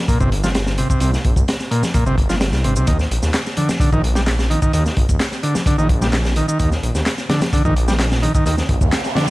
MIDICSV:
0, 0, Header, 1, 5, 480
1, 0, Start_track
1, 0, Tempo, 465116
1, 1046, Time_signature, 4, 2, 24, 8
1, 9598, End_track
2, 0, Start_track
2, 0, Title_t, "Transistor combo organ"
2, 0, Program_c, 0, 18
2, 85, Note_on_c, 0, 46, 85
2, 189, Note_off_c, 0, 46, 0
2, 209, Note_on_c, 0, 48, 99
2, 306, Note_off_c, 0, 48, 0
2, 451, Note_on_c, 0, 53, 101
2, 509, Note_off_c, 0, 53, 0
2, 807, Note_on_c, 0, 48, 72
2, 910, Note_off_c, 0, 48, 0
2, 927, Note_on_c, 0, 48, 76
2, 1030, Note_off_c, 0, 48, 0
2, 1042, Note_on_c, 0, 48, 81
2, 1147, Note_off_c, 0, 48, 0
2, 1764, Note_on_c, 0, 46, 98
2, 1883, Note_off_c, 0, 46, 0
2, 2004, Note_on_c, 0, 46, 80
2, 2108, Note_off_c, 0, 46, 0
2, 2129, Note_on_c, 0, 48, 100
2, 2226, Note_off_c, 0, 48, 0
2, 2369, Note_on_c, 0, 53, 96
2, 2428, Note_off_c, 0, 53, 0
2, 2728, Note_on_c, 0, 48, 71
2, 2830, Note_off_c, 0, 48, 0
2, 2854, Note_on_c, 0, 48, 73
2, 2957, Note_off_c, 0, 48, 0
2, 2970, Note_on_c, 0, 51, 81
2, 3071, Note_off_c, 0, 51, 0
2, 3686, Note_on_c, 0, 50, 99
2, 3804, Note_off_c, 0, 50, 0
2, 3923, Note_on_c, 0, 50, 85
2, 4028, Note_off_c, 0, 50, 0
2, 4052, Note_on_c, 0, 51, 103
2, 4148, Note_off_c, 0, 51, 0
2, 4289, Note_on_c, 0, 55, 99
2, 4348, Note_off_c, 0, 55, 0
2, 4646, Note_on_c, 0, 51, 74
2, 4749, Note_off_c, 0, 51, 0
2, 4769, Note_on_c, 0, 51, 75
2, 4874, Note_off_c, 0, 51, 0
2, 4890, Note_on_c, 0, 51, 79
2, 4991, Note_off_c, 0, 51, 0
2, 5605, Note_on_c, 0, 50, 97
2, 5724, Note_off_c, 0, 50, 0
2, 5849, Note_on_c, 0, 50, 83
2, 5951, Note_off_c, 0, 50, 0
2, 5969, Note_on_c, 0, 51, 101
2, 6066, Note_off_c, 0, 51, 0
2, 6211, Note_on_c, 0, 55, 98
2, 6269, Note_off_c, 0, 55, 0
2, 6569, Note_on_c, 0, 51, 73
2, 6671, Note_off_c, 0, 51, 0
2, 6689, Note_on_c, 0, 51, 76
2, 6793, Note_off_c, 0, 51, 0
2, 6806, Note_on_c, 0, 51, 84
2, 6909, Note_off_c, 0, 51, 0
2, 7528, Note_on_c, 0, 50, 103
2, 7645, Note_off_c, 0, 50, 0
2, 7770, Note_on_c, 0, 50, 81
2, 7871, Note_off_c, 0, 50, 0
2, 7896, Note_on_c, 0, 51, 102
2, 7990, Note_off_c, 0, 51, 0
2, 8132, Note_on_c, 0, 55, 101
2, 8189, Note_off_c, 0, 55, 0
2, 8488, Note_on_c, 0, 51, 71
2, 8590, Note_off_c, 0, 51, 0
2, 8614, Note_on_c, 0, 51, 77
2, 8715, Note_off_c, 0, 51, 0
2, 8727, Note_on_c, 0, 51, 80
2, 8830, Note_off_c, 0, 51, 0
2, 9446, Note_on_c, 0, 50, 99
2, 9564, Note_off_c, 0, 50, 0
2, 9598, End_track
3, 0, Start_track
3, 0, Title_t, "Detuned saw bass"
3, 0, Program_c, 1, 39
3, 86, Note_on_c, 1, 31, 44
3, 185, Note_off_c, 1, 31, 0
3, 214, Note_on_c, 1, 31, 96
3, 865, Note_off_c, 1, 31, 0
3, 1046, Note_on_c, 1, 36, 94
3, 1208, Note_off_c, 1, 36, 0
3, 1287, Note_on_c, 1, 34, 81
3, 1369, Note_off_c, 1, 34, 0
3, 1406, Note_on_c, 1, 36, 83
3, 1485, Note_off_c, 1, 36, 0
3, 2129, Note_on_c, 1, 31, 102
3, 2603, Note_off_c, 1, 31, 0
3, 2609, Note_on_c, 1, 36, 97
3, 2726, Note_on_c, 1, 31, 98
3, 2742, Note_off_c, 1, 36, 0
3, 2849, Note_on_c, 1, 36, 90
3, 2865, Note_off_c, 1, 31, 0
3, 2927, Note_off_c, 1, 36, 0
3, 2971, Note_on_c, 1, 39, 96
3, 3130, Note_off_c, 1, 39, 0
3, 3207, Note_on_c, 1, 34, 85
3, 3289, Note_off_c, 1, 34, 0
3, 3332, Note_on_c, 1, 39, 82
3, 3408, Note_off_c, 1, 39, 0
3, 3920, Note_on_c, 1, 34, 45
3, 4023, Note_off_c, 1, 34, 0
3, 4051, Note_on_c, 1, 34, 99
3, 4704, Note_off_c, 1, 34, 0
3, 4888, Note_on_c, 1, 39, 98
3, 5049, Note_off_c, 1, 39, 0
3, 5129, Note_on_c, 1, 34, 85
3, 5210, Note_off_c, 1, 34, 0
3, 5254, Note_on_c, 1, 39, 82
3, 5329, Note_off_c, 1, 39, 0
3, 5968, Note_on_c, 1, 34, 100
3, 6622, Note_off_c, 1, 34, 0
3, 6810, Note_on_c, 1, 39, 99
3, 6970, Note_off_c, 1, 39, 0
3, 7048, Note_on_c, 1, 34, 86
3, 7129, Note_off_c, 1, 34, 0
3, 7173, Note_on_c, 1, 39, 83
3, 7249, Note_off_c, 1, 39, 0
3, 7770, Note_on_c, 1, 34, 45
3, 7868, Note_off_c, 1, 34, 0
3, 7896, Note_on_c, 1, 34, 100
3, 8547, Note_off_c, 1, 34, 0
3, 8729, Note_on_c, 1, 39, 99
3, 8889, Note_off_c, 1, 39, 0
3, 8968, Note_on_c, 1, 34, 84
3, 9050, Note_off_c, 1, 34, 0
3, 9093, Note_on_c, 1, 39, 84
3, 9169, Note_off_c, 1, 39, 0
3, 9598, End_track
4, 0, Start_track
4, 0, Title_t, "Noise sweep"
4, 0, Program_c, 2, 103
4, 8728, Note_on_c, 2, 60, 78
4, 9598, Note_off_c, 2, 60, 0
4, 9598, End_track
5, 0, Start_track
5, 0, Title_t, "Drums"
5, 85, Note_on_c, 9, 36, 110
5, 88, Note_on_c, 9, 82, 53
5, 90, Note_on_c, 9, 42, 87
5, 188, Note_off_c, 9, 36, 0
5, 192, Note_off_c, 9, 82, 0
5, 193, Note_off_c, 9, 42, 0
5, 212, Note_on_c, 9, 82, 32
5, 214, Note_on_c, 9, 36, 99
5, 315, Note_off_c, 9, 82, 0
5, 317, Note_off_c, 9, 36, 0
5, 331, Note_on_c, 9, 42, 71
5, 434, Note_off_c, 9, 42, 0
5, 451, Note_on_c, 9, 82, 66
5, 458, Note_on_c, 9, 38, 53
5, 554, Note_off_c, 9, 82, 0
5, 561, Note_off_c, 9, 38, 0
5, 563, Note_on_c, 9, 42, 77
5, 569, Note_on_c, 9, 82, 52
5, 570, Note_on_c, 9, 38, 119
5, 667, Note_off_c, 9, 42, 0
5, 672, Note_off_c, 9, 82, 0
5, 673, Note_off_c, 9, 38, 0
5, 687, Note_on_c, 9, 38, 57
5, 693, Note_on_c, 9, 82, 31
5, 790, Note_off_c, 9, 38, 0
5, 797, Note_off_c, 9, 82, 0
5, 803, Note_on_c, 9, 42, 66
5, 906, Note_off_c, 9, 42, 0
5, 928, Note_on_c, 9, 36, 88
5, 932, Note_on_c, 9, 82, 64
5, 1031, Note_off_c, 9, 36, 0
5, 1035, Note_off_c, 9, 82, 0
5, 1035, Note_on_c, 9, 42, 78
5, 1049, Note_on_c, 9, 82, 50
5, 1139, Note_off_c, 9, 42, 0
5, 1152, Note_off_c, 9, 82, 0
5, 1173, Note_on_c, 9, 38, 35
5, 1173, Note_on_c, 9, 82, 31
5, 1276, Note_off_c, 9, 38, 0
5, 1277, Note_off_c, 9, 82, 0
5, 1285, Note_on_c, 9, 42, 61
5, 1287, Note_on_c, 9, 36, 88
5, 1388, Note_off_c, 9, 42, 0
5, 1390, Note_off_c, 9, 36, 0
5, 1406, Note_on_c, 9, 36, 90
5, 1411, Note_on_c, 9, 82, 63
5, 1509, Note_off_c, 9, 36, 0
5, 1514, Note_off_c, 9, 82, 0
5, 1528, Note_on_c, 9, 42, 94
5, 1531, Note_on_c, 9, 82, 53
5, 1534, Note_on_c, 9, 38, 105
5, 1631, Note_off_c, 9, 42, 0
5, 1634, Note_off_c, 9, 82, 0
5, 1637, Note_off_c, 9, 38, 0
5, 1652, Note_on_c, 9, 82, 31
5, 1655, Note_on_c, 9, 38, 37
5, 1755, Note_off_c, 9, 82, 0
5, 1758, Note_off_c, 9, 38, 0
5, 1768, Note_on_c, 9, 42, 60
5, 1872, Note_off_c, 9, 42, 0
5, 1888, Note_on_c, 9, 64, 78
5, 1891, Note_on_c, 9, 38, 57
5, 1892, Note_on_c, 9, 82, 61
5, 1991, Note_off_c, 9, 64, 0
5, 1994, Note_off_c, 9, 38, 0
5, 1995, Note_off_c, 9, 82, 0
5, 2003, Note_on_c, 9, 42, 93
5, 2007, Note_on_c, 9, 36, 111
5, 2009, Note_on_c, 9, 82, 51
5, 2106, Note_off_c, 9, 42, 0
5, 2110, Note_off_c, 9, 36, 0
5, 2112, Note_off_c, 9, 82, 0
5, 2130, Note_on_c, 9, 82, 31
5, 2233, Note_off_c, 9, 82, 0
5, 2246, Note_on_c, 9, 36, 88
5, 2251, Note_on_c, 9, 42, 63
5, 2350, Note_off_c, 9, 36, 0
5, 2354, Note_off_c, 9, 42, 0
5, 2368, Note_on_c, 9, 63, 99
5, 2370, Note_on_c, 9, 82, 62
5, 2372, Note_on_c, 9, 38, 48
5, 2471, Note_off_c, 9, 63, 0
5, 2473, Note_off_c, 9, 82, 0
5, 2476, Note_off_c, 9, 38, 0
5, 2485, Note_on_c, 9, 82, 50
5, 2486, Note_on_c, 9, 38, 114
5, 2493, Note_on_c, 9, 42, 89
5, 2588, Note_off_c, 9, 82, 0
5, 2589, Note_off_c, 9, 38, 0
5, 2596, Note_off_c, 9, 42, 0
5, 2610, Note_on_c, 9, 82, 30
5, 2613, Note_on_c, 9, 38, 51
5, 2713, Note_off_c, 9, 82, 0
5, 2716, Note_off_c, 9, 38, 0
5, 2728, Note_on_c, 9, 42, 69
5, 2831, Note_off_c, 9, 42, 0
5, 2848, Note_on_c, 9, 82, 62
5, 2951, Note_off_c, 9, 82, 0
5, 2961, Note_on_c, 9, 63, 82
5, 2963, Note_on_c, 9, 82, 49
5, 2964, Note_on_c, 9, 42, 78
5, 2971, Note_on_c, 9, 36, 112
5, 3064, Note_off_c, 9, 63, 0
5, 3067, Note_off_c, 9, 42, 0
5, 3067, Note_off_c, 9, 82, 0
5, 3074, Note_off_c, 9, 36, 0
5, 3089, Note_on_c, 9, 82, 30
5, 3093, Note_on_c, 9, 38, 33
5, 3192, Note_off_c, 9, 82, 0
5, 3196, Note_off_c, 9, 38, 0
5, 3213, Note_on_c, 9, 42, 67
5, 3316, Note_off_c, 9, 42, 0
5, 3329, Note_on_c, 9, 38, 41
5, 3330, Note_on_c, 9, 82, 59
5, 3433, Note_off_c, 9, 38, 0
5, 3433, Note_off_c, 9, 82, 0
5, 3443, Note_on_c, 9, 42, 91
5, 3447, Note_on_c, 9, 39, 103
5, 3447, Note_on_c, 9, 82, 50
5, 3448, Note_on_c, 9, 38, 109
5, 3546, Note_off_c, 9, 42, 0
5, 3550, Note_off_c, 9, 39, 0
5, 3550, Note_off_c, 9, 82, 0
5, 3551, Note_off_c, 9, 38, 0
5, 3571, Note_on_c, 9, 82, 31
5, 3580, Note_on_c, 9, 38, 37
5, 3674, Note_off_c, 9, 82, 0
5, 3681, Note_on_c, 9, 42, 66
5, 3683, Note_off_c, 9, 38, 0
5, 3686, Note_on_c, 9, 64, 79
5, 3784, Note_off_c, 9, 42, 0
5, 3789, Note_off_c, 9, 64, 0
5, 3810, Note_on_c, 9, 38, 61
5, 3810, Note_on_c, 9, 82, 57
5, 3811, Note_on_c, 9, 64, 70
5, 3913, Note_off_c, 9, 38, 0
5, 3913, Note_off_c, 9, 82, 0
5, 3914, Note_off_c, 9, 64, 0
5, 3920, Note_on_c, 9, 36, 120
5, 3928, Note_on_c, 9, 42, 92
5, 3929, Note_on_c, 9, 82, 50
5, 4023, Note_off_c, 9, 36, 0
5, 4031, Note_off_c, 9, 42, 0
5, 4032, Note_off_c, 9, 82, 0
5, 4050, Note_on_c, 9, 36, 85
5, 4052, Note_on_c, 9, 82, 30
5, 4153, Note_off_c, 9, 36, 0
5, 4156, Note_off_c, 9, 82, 0
5, 4169, Note_on_c, 9, 42, 74
5, 4272, Note_off_c, 9, 42, 0
5, 4287, Note_on_c, 9, 38, 59
5, 4293, Note_on_c, 9, 82, 60
5, 4390, Note_off_c, 9, 38, 0
5, 4397, Note_off_c, 9, 82, 0
5, 4403, Note_on_c, 9, 42, 89
5, 4404, Note_on_c, 9, 38, 103
5, 4409, Note_on_c, 9, 39, 97
5, 4409, Note_on_c, 9, 82, 48
5, 4506, Note_off_c, 9, 42, 0
5, 4508, Note_off_c, 9, 38, 0
5, 4512, Note_off_c, 9, 39, 0
5, 4512, Note_off_c, 9, 82, 0
5, 4531, Note_on_c, 9, 38, 59
5, 4533, Note_on_c, 9, 82, 30
5, 4635, Note_off_c, 9, 38, 0
5, 4636, Note_off_c, 9, 82, 0
5, 4653, Note_on_c, 9, 42, 61
5, 4756, Note_off_c, 9, 42, 0
5, 4770, Note_on_c, 9, 36, 89
5, 4771, Note_on_c, 9, 82, 60
5, 4874, Note_off_c, 9, 36, 0
5, 4874, Note_off_c, 9, 82, 0
5, 4885, Note_on_c, 9, 42, 90
5, 4889, Note_on_c, 9, 82, 47
5, 4988, Note_off_c, 9, 42, 0
5, 4992, Note_off_c, 9, 82, 0
5, 5014, Note_on_c, 9, 82, 29
5, 5019, Note_on_c, 9, 38, 34
5, 5117, Note_off_c, 9, 82, 0
5, 5122, Note_off_c, 9, 38, 0
5, 5125, Note_on_c, 9, 42, 70
5, 5129, Note_on_c, 9, 36, 87
5, 5229, Note_off_c, 9, 42, 0
5, 5232, Note_off_c, 9, 36, 0
5, 5253, Note_on_c, 9, 82, 60
5, 5254, Note_on_c, 9, 36, 101
5, 5356, Note_off_c, 9, 82, 0
5, 5357, Note_off_c, 9, 36, 0
5, 5363, Note_on_c, 9, 42, 79
5, 5366, Note_on_c, 9, 38, 125
5, 5369, Note_on_c, 9, 39, 103
5, 5369, Note_on_c, 9, 82, 50
5, 5466, Note_off_c, 9, 42, 0
5, 5469, Note_off_c, 9, 38, 0
5, 5473, Note_off_c, 9, 39, 0
5, 5473, Note_off_c, 9, 82, 0
5, 5489, Note_on_c, 9, 38, 35
5, 5494, Note_on_c, 9, 82, 30
5, 5592, Note_off_c, 9, 38, 0
5, 5598, Note_off_c, 9, 82, 0
5, 5606, Note_on_c, 9, 42, 60
5, 5709, Note_off_c, 9, 42, 0
5, 5729, Note_on_c, 9, 38, 57
5, 5732, Note_on_c, 9, 82, 57
5, 5735, Note_on_c, 9, 64, 70
5, 5832, Note_off_c, 9, 38, 0
5, 5835, Note_off_c, 9, 82, 0
5, 5838, Note_off_c, 9, 64, 0
5, 5841, Note_on_c, 9, 36, 103
5, 5844, Note_on_c, 9, 42, 92
5, 5848, Note_on_c, 9, 82, 51
5, 5945, Note_off_c, 9, 36, 0
5, 5948, Note_off_c, 9, 42, 0
5, 5951, Note_off_c, 9, 82, 0
5, 5971, Note_on_c, 9, 82, 29
5, 6074, Note_off_c, 9, 82, 0
5, 6082, Note_on_c, 9, 42, 69
5, 6083, Note_on_c, 9, 36, 93
5, 6186, Note_off_c, 9, 36, 0
5, 6186, Note_off_c, 9, 42, 0
5, 6207, Note_on_c, 9, 63, 98
5, 6211, Note_on_c, 9, 82, 60
5, 6217, Note_on_c, 9, 38, 52
5, 6311, Note_off_c, 9, 63, 0
5, 6315, Note_off_c, 9, 82, 0
5, 6320, Note_off_c, 9, 38, 0
5, 6323, Note_on_c, 9, 42, 82
5, 6327, Note_on_c, 9, 39, 96
5, 6327, Note_on_c, 9, 82, 47
5, 6329, Note_on_c, 9, 38, 112
5, 6426, Note_off_c, 9, 42, 0
5, 6430, Note_off_c, 9, 39, 0
5, 6430, Note_off_c, 9, 82, 0
5, 6433, Note_off_c, 9, 38, 0
5, 6452, Note_on_c, 9, 82, 29
5, 6453, Note_on_c, 9, 38, 51
5, 6556, Note_off_c, 9, 38, 0
5, 6556, Note_off_c, 9, 82, 0
5, 6563, Note_on_c, 9, 42, 67
5, 6666, Note_off_c, 9, 42, 0
5, 6694, Note_on_c, 9, 82, 60
5, 6797, Note_off_c, 9, 82, 0
5, 6807, Note_on_c, 9, 42, 88
5, 6808, Note_on_c, 9, 63, 73
5, 6808, Note_on_c, 9, 82, 50
5, 6810, Note_on_c, 9, 36, 110
5, 6910, Note_off_c, 9, 42, 0
5, 6911, Note_off_c, 9, 63, 0
5, 6912, Note_off_c, 9, 82, 0
5, 6913, Note_off_c, 9, 36, 0
5, 6933, Note_on_c, 9, 38, 33
5, 6934, Note_on_c, 9, 82, 31
5, 7036, Note_off_c, 9, 38, 0
5, 7037, Note_off_c, 9, 82, 0
5, 7051, Note_on_c, 9, 42, 61
5, 7155, Note_off_c, 9, 42, 0
5, 7171, Note_on_c, 9, 38, 42
5, 7172, Note_on_c, 9, 82, 61
5, 7274, Note_off_c, 9, 38, 0
5, 7275, Note_off_c, 9, 82, 0
5, 7287, Note_on_c, 9, 39, 102
5, 7287, Note_on_c, 9, 82, 52
5, 7290, Note_on_c, 9, 38, 112
5, 7292, Note_on_c, 9, 42, 81
5, 7390, Note_off_c, 9, 39, 0
5, 7390, Note_off_c, 9, 82, 0
5, 7393, Note_off_c, 9, 38, 0
5, 7395, Note_off_c, 9, 42, 0
5, 7410, Note_on_c, 9, 38, 37
5, 7413, Note_on_c, 9, 82, 32
5, 7513, Note_off_c, 9, 38, 0
5, 7516, Note_off_c, 9, 82, 0
5, 7522, Note_on_c, 9, 64, 83
5, 7529, Note_on_c, 9, 42, 75
5, 7530, Note_on_c, 9, 38, 106
5, 7626, Note_off_c, 9, 64, 0
5, 7632, Note_off_c, 9, 42, 0
5, 7634, Note_off_c, 9, 38, 0
5, 7647, Note_on_c, 9, 64, 69
5, 7653, Note_on_c, 9, 82, 61
5, 7658, Note_on_c, 9, 38, 110
5, 7658, Note_on_c, 9, 42, 71
5, 7750, Note_off_c, 9, 64, 0
5, 7756, Note_off_c, 9, 82, 0
5, 7761, Note_off_c, 9, 38, 0
5, 7761, Note_off_c, 9, 42, 0
5, 7769, Note_on_c, 9, 36, 109
5, 7769, Note_on_c, 9, 82, 52
5, 7777, Note_on_c, 9, 42, 85
5, 7872, Note_off_c, 9, 82, 0
5, 7873, Note_off_c, 9, 36, 0
5, 7880, Note_off_c, 9, 42, 0
5, 7896, Note_on_c, 9, 36, 93
5, 7896, Note_on_c, 9, 82, 30
5, 7999, Note_off_c, 9, 82, 0
5, 8000, Note_off_c, 9, 36, 0
5, 8014, Note_on_c, 9, 42, 64
5, 8117, Note_off_c, 9, 42, 0
5, 8135, Note_on_c, 9, 82, 64
5, 8137, Note_on_c, 9, 38, 59
5, 8238, Note_off_c, 9, 82, 0
5, 8240, Note_off_c, 9, 38, 0
5, 8251, Note_on_c, 9, 38, 104
5, 8252, Note_on_c, 9, 39, 97
5, 8252, Note_on_c, 9, 82, 50
5, 8253, Note_on_c, 9, 42, 93
5, 8354, Note_off_c, 9, 38, 0
5, 8355, Note_off_c, 9, 39, 0
5, 8355, Note_off_c, 9, 82, 0
5, 8357, Note_off_c, 9, 42, 0
5, 8375, Note_on_c, 9, 82, 30
5, 8377, Note_on_c, 9, 38, 65
5, 8478, Note_off_c, 9, 82, 0
5, 8480, Note_off_c, 9, 38, 0
5, 8494, Note_on_c, 9, 42, 69
5, 8597, Note_off_c, 9, 42, 0
5, 8614, Note_on_c, 9, 36, 103
5, 8615, Note_on_c, 9, 82, 64
5, 8717, Note_off_c, 9, 36, 0
5, 8718, Note_off_c, 9, 82, 0
5, 8725, Note_on_c, 9, 63, 81
5, 8731, Note_on_c, 9, 82, 51
5, 8738, Note_on_c, 9, 42, 88
5, 8829, Note_off_c, 9, 63, 0
5, 8834, Note_off_c, 9, 82, 0
5, 8841, Note_off_c, 9, 42, 0
5, 8853, Note_on_c, 9, 38, 36
5, 8854, Note_on_c, 9, 82, 33
5, 8957, Note_off_c, 9, 38, 0
5, 8958, Note_off_c, 9, 82, 0
5, 8967, Note_on_c, 9, 42, 69
5, 8969, Note_on_c, 9, 36, 89
5, 9070, Note_off_c, 9, 42, 0
5, 9072, Note_off_c, 9, 36, 0
5, 9093, Note_on_c, 9, 36, 94
5, 9094, Note_on_c, 9, 82, 64
5, 9196, Note_off_c, 9, 36, 0
5, 9197, Note_off_c, 9, 82, 0
5, 9209, Note_on_c, 9, 39, 104
5, 9209, Note_on_c, 9, 42, 79
5, 9209, Note_on_c, 9, 82, 55
5, 9212, Note_on_c, 9, 38, 118
5, 9312, Note_off_c, 9, 39, 0
5, 9312, Note_off_c, 9, 82, 0
5, 9313, Note_off_c, 9, 42, 0
5, 9315, Note_off_c, 9, 38, 0
5, 9334, Note_on_c, 9, 82, 33
5, 9348, Note_on_c, 9, 38, 39
5, 9437, Note_off_c, 9, 82, 0
5, 9446, Note_on_c, 9, 64, 85
5, 9452, Note_off_c, 9, 38, 0
5, 9458, Note_on_c, 9, 42, 82
5, 9460, Note_on_c, 9, 38, 101
5, 9549, Note_off_c, 9, 64, 0
5, 9561, Note_off_c, 9, 42, 0
5, 9563, Note_off_c, 9, 38, 0
5, 9598, End_track
0, 0, End_of_file